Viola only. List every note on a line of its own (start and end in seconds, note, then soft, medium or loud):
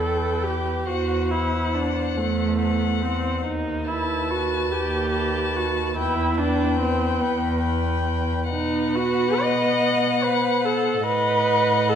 0.00 0.45 A4 medium
0.44 0.88 G4 medium
0.87 1.32 F#4 medium
1.31 1.76 E4 medium
1.74 2.19 D4 soft
2.17 3.03 A3 medium
3.02 3.44 C4 soft
3.45 3.89 D#4 medium
3.88 4.32 E4 medium
4.31 4.74 F#4 medium
4.72 5.57 G4 medium
5.56 5.96 F#4 medium
5.96 6.39 E4 medium
6.38 6.79 D4 medium
6.80 7.22 C4 medium
7.21 7.62 B3 medium
8.49 8.97 D#4 medium
8.95 9.42 F#4 medium
9.41 10.25 D#5 medium
10.24 10.67 B4 medium
10.65 11.06 A4 medium
11.06 11.91 B4 medium
11.89 11.95 A4 medium